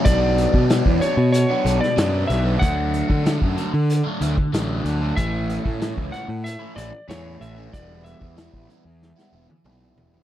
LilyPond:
<<
  \new Staff \with { instrumentName = "Electric slide guitar" } { \time 4/4 \key e \dorian \tempo 4 = 94 d''4 r8 cis''8 cis''8. d''8. e''8 | fis''2 r2 | e''4. fis''8 e''8 d''8 cis''8 e''8 | d''8 e''4. r2 | }
  \new Staff \with { instrumentName = "Overdriven electric guitar" } { \time 4/4 \key e \dorian <b, fis b d'>8. <fis b d'>16 <b, fis b d'>8 <b, fis b d'>8. <fis b d'>16 <b, fis b d'>8 <b, fis b d'>8. <fis b d'>16 | <d fis a d'>8. <fis a d'>16 <d fis a d'>8 <d fis a d'>8. <fis a d'>16 <d fis a d'>8 <d fis a d'>8. <fis a d'>16 | <a, e a cis' e'>8. <a cis' e'>16 <a, e a cis' e'>8 <e a cis' e'>8. <a cis' e'>16 <e a cis' e'>8 <a, e a cis' e'>8. <a cis' e'>16 | <e g b e'>8. <g b e'>16 <e g b e'>8 <e g b e'>8. <g b e'>16 <e g b e'>8 <e g b e'>8. <g b e'>16 | }
  \new Staff \with { instrumentName = "Picked electric bass" } { \clef bass \time 4/4 \key e \dorian b,,8. b,8 e,16 r16 b,8 r16 b,,16 r16 fis,8 b,,8 | d,8. d8 fis,16 r16 d8 r16 d,16 r16 a,,8 d,8 | a,,8. a,8 cis,16 r16 a,8 r16 a,,16 r16 e,8 a,,8 | e,,8. e,8 a,,16 r16 e,8 r16 e,,16 r16 b,,8 e,,8 | }
  \new DrumStaff \with { instrumentName = "Drums" } \drummode { \time 4/4 <hh bd>8 hh16 bd16 <hh sn>16 bd16 hh8 hh8 hh16 sn16 <hh sn>8 hh8 | <hh bd>8 hh16 bd16 <hh sn>16 bd16 hh8 hh8 hh16 bd16 <hh sn>8 hh8 | <hh bd>8 hh16 bd16 <hh sn>16 bd16 hh8 hh8 hh8 <hh sn>8 hh8 | <hh bd>8 hh16 bd16 <hh sn>16 bd16 hh8 sn16 sn8 tommh16 toml8 tomfh16 tomfh16 | }
>>